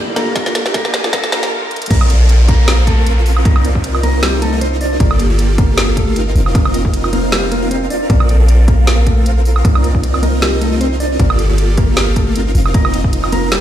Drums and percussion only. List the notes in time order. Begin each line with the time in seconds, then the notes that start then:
0.16 snare, closed hi-hat
0.36 kick, snare, closed hi-hat
0.46 snare
0.55 snare, closed hi-hat
0.66 snare
0.74 kick, snare, closed hi-hat
0.85 snare
0.94 snare, closed hi-hat
1.04 snare
1.13 kick, snare, closed hi-hat
1.24 snare
1.32 snare, closed hi-hat
1.43 snare
1.71 closed hi-hat
1.76 closed hi-hat
1.82 closed hi-hat
1.86 closed hi-hat
1.91 kick, closed hi-hat, crash
2.01 high woodblock
2.10 closed hi-hat
2.29 closed hi-hat
2.49 kick, closed hi-hat
2.68 snare, closed hi-hat
2.87 kick, closed hi-hat
3.07 closed hi-hat
3.26 open hi-hat
3.37 high woodblock
3.45 kick, closed hi-hat
3.56 high woodblock
3.65 closed hi-hat
3.75 kick
3.84 closed hi-hat
3.95 high woodblock
4.03 closed hi-hat
4.23 snare, closed hi-hat
4.42 closed hi-hat
4.61 closed hi-hat
4.81 open hi-hat
5.00 kick, closed hi-hat
5.11 high woodblock
5.20 closed hi-hat
5.39 closed hi-hat
5.58 kick, closed hi-hat
5.78 snare, closed hi-hat
5.97 kick, closed hi-hat
6.16 closed hi-hat
6.36 open hi-hat
6.46 high woodblock
6.55 kick, closed hi-hat
6.65 high woodblock
6.74 closed hi-hat
6.85 kick
6.94 closed hi-hat
7.04 high woodblock
7.13 closed hi-hat
7.32 snare, closed hi-hat
7.52 closed hi-hat
7.71 closed hi-hat
7.90 open hi-hat
8.10 kick, closed hi-hat
8.20 high woodblock
8.29 closed hi-hat
8.48 closed hi-hat
8.68 kick, closed hi-hat
8.87 snare, closed hi-hat
9.07 kick, closed hi-hat
9.26 closed hi-hat
9.45 open hi-hat
9.56 high woodblock
9.65 kick, closed hi-hat
9.75 high woodblock
9.84 closed hi-hat
9.95 kick
10.03 closed hi-hat
10.14 high woodblock
10.23 closed hi-hat
10.42 snare, closed hi-hat
10.61 closed hi-hat
10.81 closed hi-hat
11.00 open hi-hat
11.19 kick, closed hi-hat
11.30 high woodblock
11.39 closed hi-hat
11.58 closed hi-hat
11.77 kick, closed hi-hat
11.97 snare, closed hi-hat
12.16 kick, closed hi-hat
12.36 closed hi-hat
12.55 open hi-hat
12.66 high woodblock
12.74 kick, closed hi-hat
12.85 high woodblock
12.94 closed hi-hat
13.04 kick
13.13 closed hi-hat
13.24 high woodblock
13.32 closed hi-hat
13.52 snare, closed hi-hat